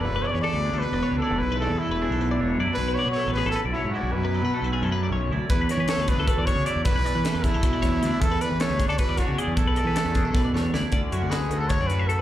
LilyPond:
<<
  \new Staff \with { instrumentName = "Clean electric guitar" } { \time 7/8 \key e \mixolydian \tempo 4 = 154 r16 b'16 d''16 b'16 a'16 b'16 gis'16 a'16 b'16 d''16 cis''8 d''8 | r16 b'16 d''16 b'16 a'16 b'16 gis'16 a'16 b'16 d''16 cis''8 d''8 | r16 b'16 d''16 b'16 a'16 b'16 gis'16 a'16 b'16 d''16 cis''8 d''8 | r16 b'16 d''16 b'16 a'16 b'16 gis'16 a'16 b'16 d''16 cis''8 d''8 |
r16 b'16 d''16 b'16 a'16 b'16 gis'16 a'16 b'16 d''16 cis''8 d''8 | r16 b'16 d''16 b'16 a'16 b'16 gis'16 a'16 b'16 d''16 cis''8 d''8 | r16 b'16 d''16 b'16 a'16 b'16 gis'16 a'16 b'16 d''16 cis''8 d''8 | r16 b'16 d''16 b'16 a'16 b'16 gis'16 a'16 b'16 d''16 cis''8 d''8 |
d''8 e''16 d''16 b'8 a'16 a'16 cis''16 d''8 e''16 a'16 r16 | }
  \new Staff \with { instrumentName = "Trumpet" } { \time 7/8 \key e \mixolydian b'8 cis''32 d''32 cis''16 d''4 b'4 a'8 | b'8 a'8 e'2 r8 | b'8 cis''8 cis''8 b'8 a'8 e'8 fis'8 | b'2 r4. |
b'8 cis''8 cis''8 b'8 a'8 cis''8 d''8 | b'4. e'2 | a'8 b'8 cis''8. d''16 b'8 fis'8 gis'8 | a'2. r8 |
r8 fis'8 gis'8. a'16 cis''8 b'8 a'8 | }
  \new Staff \with { instrumentName = "Clean electric guitar" } { \time 7/8 \key e \mixolydian << { r4 a8 d'4 d'8 e'8~ | e'4 a8 d'4 d'8 e'8~ | e'4 a8 cis'4 cis'8 e'8~ | e'4 a8 cis'4 cis'8 e'8~ |
e'4 a8 d'4 d'8 e'8~ | e'4 a8 d'4 d'8 d'8 | r4 a8 d'4 d'8 e'8~ | e'4 a8 d'4 d'8 e'8 |
cis'8 cis'8 fis'8 fis'8 cis'8 fis'8 fis'8 | } \\ { <e, e>8 e4. b,4. | e,8 e4. b,4. | b,8 fis4. fis,4. | b,8 fis4. fis,4. |
e,8 e4. b,4. | e,8 e4. b,4. | e,8 e4. b,4. | e,8 e4. b,4. |
d4. a4 a,4 | } >> }
  \new Staff \with { instrumentName = "Fingered electric bass" } { \clef bass \time 7/8 \key e \mixolydian e,,8 r16 e,16 r16 d,8 d,16 r16 e,,16 r16 cis,16 r16 e,,16 | b,,8. e,16 r16 e,,8 b,,8. e,,8 fis,16 r16 | b,,8 r16 b,16 r16 a,,8 a,,16 r16 b,,16 r16 gis,16 r16 b,,16 | fis,8. b,16 r16 b,,8 fis,8. b,,8 d,16 r16 |
e,8 r16 e16 r16 d,8 d,16 r16 e,16 r16 cis16 r16 e,16 | b,,8. e16 r16 e,8 b,,8. e,8 d,16 r16 | e,8 r16 e16 r16 d,8 d,16 r16 e,16 r16 cis16 r16 e,16 | b,,8. e16 r16 e,8 b,,8. e,8 d,16 r16 |
d,16 r16 fis,16 d,8. d,8. fis,4~ fis,16 | }
  \new DrumStaff \with { instrumentName = "Drums" } \drummode { \time 7/8 r4 r4 r4. | r4 r4 r4. | r4 r4 r4. | r4 r4 r4. |
<hh bd>8 <hh sn>8 <hh sn>8 <hh bd>8 <hh bd>8 <hh bd>8 hh8 | <hh bd>8 hh8 <hh sn>8 <hh bd sn>8 <hh bd>8 <hh bd sn>8 <hh sn>8 | <hh bd>8 hh8 <hh sn>8 <hh bd sn>8 <hh bd>8 <hh bd sn>8 hh8 | <hh bd>8 hh8 <hh sn>8 <hh bd sn>8 <bd sn>8 sn8 sn8 |
<hh bd>8 hh8 <hh sn>8 hh8 <hh bd>8 hh8 hh8 | }
>>